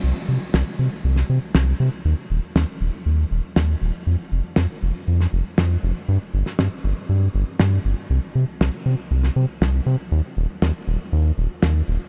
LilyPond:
<<
  \new Staff \with { instrumentName = "Analog synth bass" } { \clef bass \time 4/4 \key c \minor \tempo 4 = 119 c,8 c8 c,8 c8 c,8 c8 c,8 c8 | ees,8 ees,,8 ees,8 ees,,8 ees,8 ees,,8 ees,8 ees,,8 | f,8 f,,8 f,8 f,,8 f,8 f,,8 f,8 f,,8 | g,8 g,,8 g,8 g,,8 g,8 g,,8 g,8 g,,8 |
c,8 c8 c,8 c8 c,8 c8 c,8 c8 | ees,8 ees,,8 ees,8 ees,,8 ees,8 ees,,8 ees,8 ees,,8 | }
  \new DrumStaff \with { instrumentName = "Drums" } \drummode { \time 4/4 r4 sn4 r16 sn8. sn4 | r4 sn4 r4 sn4 | r4 sn4 r16 sn8. sn4 | r8. sn16 sn4 r4 sn4 |
r4 sn4 r16 sn8. sn4 | r4 sn4 r4 sn4 | }
>>